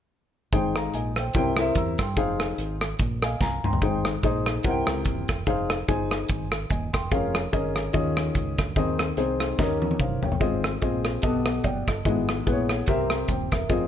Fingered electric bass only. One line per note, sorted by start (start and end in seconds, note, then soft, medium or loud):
0.52 0.87 G#1 medium
0.94 1.29 A#1 medium
1.35 1.70 C2 medium
1.75 1.95 E2 medium
1.99 2.14 G2 medium
2.17 2.52 F1 medium
2.58 2.93 G#1 medium
3.00 3.34 A#1 medium
3.40 3.60 C2 medium
3.64 3.79 C#2 medium
3.82 4.17 G#1 medium
4.23 4.58 A#1 medium
4.64 4.84 C2 medium
4.88 5.03 C#2 medium
5.06 5.25 D#1 medium
5.29 5.44 E1 medium
5.47 5.82 F1 medium
5.89 6.23 G1 medium
6.30 6.64 G#1 medium
6.70 6.90 D#1 medium
6.94 7.09 E1 medium
7.11 7.46 F1 loud
7.53 7.88 G#1 medium
7.94 8.29 D#2 medium
8.35 8.55 C#2 medium
8.58 8.74 D2 medium
8.76 9.11 D#2 medium
9.17 9.52 C2 medium
9.59 9.94 D#2 medium
10.00 10.19 F#1 medium
10.22 10.38 G1 medium
10.41 10.76 G#1 loud
10.82 11.17 A#1 medium
11.23 11.58 B1 medium
11.64 11.84 F#1 medium
11.87 12.03 G1 medium
12.05 12.40 G#1 medium
12.47 12.82 A#1 medium
12.88 13.23 C2 medium
13.29 13.48 D#1 medium
13.52 13.67 E1 medium
13.70 13.88 F1 loud